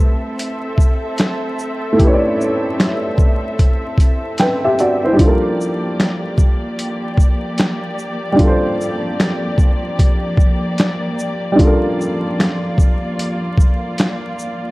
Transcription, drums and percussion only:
0.39 closed hi-hat
0.78 kick, shaker
1.18 finger snap, snare, closed hi-hat
1.59 shaker
1.99 kick, closed hi-hat
2.41 shaker
2.80 finger snap, snare, closed hi-hat
3.18 kick, shaker
3.59 kick, closed hi-hat
3.98 kick, closed hi-hat, shaker
4.38 finger snap, snare, closed hi-hat
4.79 closed hi-hat, shaker
5.19 kick, closed hi-hat
5.61 shaker
6.00 finger snap, snare, closed hi-hat
6.38 kick, shaker
6.79 closed hi-hat
7.17 kick, shaker
7.58 finger snap, snare, closed hi-hat
7.99 shaker
8.39 kick, closed hi-hat
8.81 shaker
9.20 finger snap, snare, closed hi-hat
9.58 kick, shaker
9.99 kick, closed hi-hat
10.37 kick, shaker
10.78 finger snap, snare, closed hi-hat
11.19 shaker
11.59 kick, closed hi-hat
12.01 shaker
12.40 finger snap, snare, closed hi-hat
12.78 kick, shaker
13.19 closed hi-hat
13.58 kick, shaker
13.98 finger snap, snare, closed hi-hat
14.39 shaker

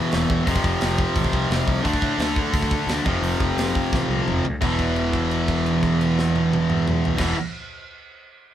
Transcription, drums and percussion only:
0.12 snare, open hi-hat
0.30 kick
0.47 kick, open hi-hat
0.56 kick
0.64 kick
0.81 snare, open hi-hat
0.98 kick
1.16 kick, open hi-hat
1.24 kick
1.33 kick
1.51 snare, open hi-hat
1.68 kick
1.85 kick, open hi-hat
1.93 kick
2.02 kick
2.19 snare, open hi-hat
2.36 kick
2.54 kick, open hi-hat
2.62 kick
2.71 kick
2.88 snare, open hi-hat
3.06 kick
3.23 open hi-hat
3.40 kick
3.58 snare, open hi-hat
3.75 kick
3.93 kick, snare
4.11 high tom
4.28 mid tom
4.45 floor tom
4.62 kick, crash
4.79 kick, crash
4.96 crash
5.13 kick, crash
5.31 crash
5.48 kick, crash
5.66 crash
5.83 kick, crash
6.01 crash
6.19 snare
6.36 high tom
6.53 high tom
6.70 mid tom
6.88 mid tom
7.05 floor tom
7.18 kick, snare, crash

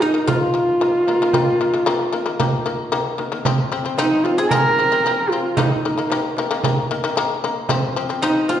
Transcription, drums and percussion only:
0.28 frame drum
0.69 frame drum
0.81 frame drum
1.07 frame drum
1.33 frame drum
1.61 frame drum
1.74 frame drum
1.87 frame drum
2.40 frame drum
2.79 frame drum
2.92 frame drum
3.19 frame drum
3.45 frame drum
3.72 frame drum
3.98 frame drum
4.24 frame drum
4.51 frame drum
4.77 frame drum
5.04 frame drum
5.31 frame drum
5.57 frame drum
5.83 frame drum
6.10 frame drum
6.37 frame drum
6.64 frame drum
6.91 frame drum
7.16 frame drum
7.43 frame drum
7.69 frame drum
7.95 frame drum
8.22 frame drum
8.48 frame drum

